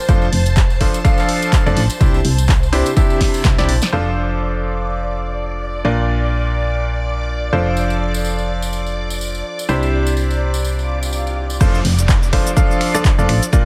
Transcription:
Already playing: string machine C5 A5
0.09 fm bass F1, grand piano F3 D4 F4 A4 C5, kick, closed hi-hat, tambourine
0.22 tambourine
0.33 fm bass F1, open hi-hat
0.46 closed hi-hat, tambourine
0.57 kick, clap, closed hi-hat, tambourine
0.70 tambourine
0.81 grand piano F3 D4 F4 A4 C5, kick, open hi-hat
0.94 closed hi-hat, tambourine
1.05 grand piano F3 D4 F4 A4 F5, kick, closed hi-hat, tambourine
1.18 clap, tambourine
1.29 open hi-hat
1.42 closed hi-hat, tambourine
1.53 kick, clap, closed hi-hat, tambourine
1.66 fm bass F1, grand piano F3 D4 F4 A4 D5, tambourine
1.77 fm bass A1, open hi-hat
1.90 closed hi-hat, tambourine
2.01 fm bass C2, grand piano C3 D4 E4 G4 C5, kick, closed hi-hat, tambourine
2.14 tambourine
2.25 fm bass C2, open hi-hat
2.38 closed hi-hat, tambourine
2.49 kick, clap, closed hi-hat, tambourine
2.63 tambourine
2.73 grand piano C3 D4 E4 G4 C5, open hi-hat
2.86 closed hi-hat, tambourine
2.96 grand piano C3 D4 E4 G4 E5, kick, closed hi-hat, tambourine
3.10 tambourine
3.21 kick, snare, open hi-hat
3.34 open hi-hat, tambourine
3.44 fm bass C2, kick, snare, clap, closed hi-hat, tambourine
3.58 grand piano C3 D4 E4 G4 D5, snare, tambourine
3.69 fm bass A#1, open hi-hat
3.82 snare, closed hi-hat, tambourine
3.93 fm bass F1, grand piano F3 D4 F4 A4 C5, string machine D5 D6
5.85 fm bass A#1, grand piano A#2 D4 F4 A#4 D5
7.53 fm bass F1, grand piano F3 D4 F4 A4 C5
7.77 tambourine
7.90 tambourine
8.14 tambourine
8.25 tambourine
8.39 tambourine
8.62 tambourine
8.73 tambourine
8.86 tambourine
9.10 tambourine
9.21 tambourine
9.35 tambourine
9.59 tambourine
9.69 fm bass C2, grand piano C3 D4 E4 G4 C5, tambourine
9.83 tambourine
10.07 tambourine
10.17 tambourine
10.30 tambourine
10.54 tambourine
10.65 tambourine, swell
10.79 tambourine
11.03 tambourine
11.13 tambourine
11.27 tambourine
11.50 tambourine
11.61 fm bass F1, grand piano F3 D4 F4 A4 C5, string machine D5 D6, kick, closed hi-hat, downlifter, cabasa
11.75 cabasa
11.85 fm bass F1, open hi-hat
11.99 closed hi-hat, cabasa
12.09 kick, clap, closed hi-hat, cabasa
12.23 cabasa
12.33 grand piano F3 D4 F4 A4 C5, finger snap, kick, open hi-hat
12.47 closed hi-hat, cabasa
12.57 grand piano F3 D4 F4 A4 F5, kick, closed hi-hat, cabasa
12.71 cabasa
12.81 finger snap, open hi-hat
12.94 grand piano F3 D4 F4 A4 D5, closed hi-hat, cabasa
13.05 kick, clap, closed hi-hat, cabasa
13.18 fm bass F1, grand piano F3 D4 F4 A4 D5, cabasa
13.29 fm bass A1, finger snap, open hi-hat
13.43 closed hi-hat, cabasa
13.53 fm bass A#1, grand piano A#2 D4 F4 A#4 D5, kick, closed hi-hat, cabasa

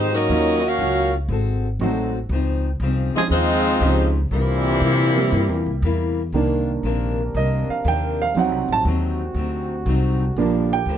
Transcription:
Already playing: upright bass G#2, steel-string acoustic guitar F3 G#3 D#4 G4, saxophone section G#3 D#4 G4 C5
0.12 trombone section F#3 A#3 D#4, saxophone section C#4 F#4 A#4 D#5
0.29 upright bass D#2, steel-string acoustic guitar D#3 F#3 C#4 F4, grand piano F#3 A#3 C#4 D#4 F4
0.62 trombone section A#3 C#4 F#4, saxophone section C#4 F#4 A#4 F5
0.79 upright bass C#2, steel-string acoustic guitar D#3 F#3 C#4 F4
1.29 upright bass G#1, steel-string acoustic guitar G#3 C4 F#4 A4
1.80 upright bass A1, grand piano F#3 A3 C4 D#4 F#4, steel-string acoustic guitar G#3 C4 F#4 A4
2.29 upright bass C#2, steel-string acoustic guitar C#3 F3 C4
2.34 steel-string acoustic guitar D#4
2.80 upright bass C2, steel-string acoustic guitar C#3 F3 C4
2.85 steel-string acoustic guitar D#4
3.15 trombone section C3 F3 G#3, saxophone section F3 C4 D#4 G#4, grand piano F3 C4 C#4 D#4 G#4, muted upright bass stroke
3.29 upright bass D#2, steel-string acoustic guitar C#3 F3, trombone section F3 G#3 C4, saxophone section G#3 D#4 F4 C5
3.34 steel-string acoustic guitar C4 D#4
3.81 upright bass C#2, steel-string acoustic guitar C#3 F3 C4 D#4, grand piano F3 C4 C#4 D#4 G4
4.31 upright bass C2, trombone section G2 A#2 E3, steel-string acoustic guitar C3 G3 A#3, saxophone section G3 A#3 C4 E4
4.35 steel-string acoustic guitar E4
4.82 upright bass C3, steel-string acoustic guitar C3 G3 A#3 E4
5.17 grand piano G3 A#3 C4 E4 G4
5.32 upright bass G2, steel-string acoustic guitar C3 G3 A#3 E4
5.49 upright bass E2
5.66 upright bass C2
5.82 upright bass E2, steel-string acoustic guitar C3 G3 A#3 E4
6.32 upright bass C2, steel-string acoustic guitar C3 D#3 A#3 D4, trombone section C3 C4 D4 A#4, grand piano D#3 A#3 D4
6.83 upright bass A#1, steel-string acoustic guitar C3 D#3 A#3 D4
7.35 upright bass C2, steel-string acoustic guitar C3 D#3 A#3 D4, grand piano D#5
7.69 grand piano F5, muted upright bass stroke
7.85 upright bass D#2, steel-string acoustic guitar C3 D#3 A#3 D4, grand piano G5
8.22 grand piano F5
8.35 upright bass D2, steel-string acoustic guitar D3 F#3 C4, trombone section D3 F#4, grand piano F#3 C4 D#4
8.39 steel-string acoustic guitar D#4, grand piano F#5
8.52 upright bass C2
8.68 upright bass A1
8.72 grand piano A5
8.85 upright bass D#2, steel-string acoustic guitar D3 F#3 C4 D#4
9.35 upright bass D2, steel-string acoustic guitar D3 F#3 C4
9.39 steel-string acoustic guitar D#4
9.86 upright bass C2, steel-string acoustic guitar D3 F#3 C4 D#4
10.36 upright bass A#1, steel-string acoustic guitar G2 F3, trombone section F3 A#3 G4, grand piano F3 A#3 D4
10.40 steel-string acoustic guitar A#3 D4
10.73 grand piano G5
10.86 upright bass D2, steel-string acoustic guitar G2 F3
10.90 steel-string acoustic guitar A#3 D4

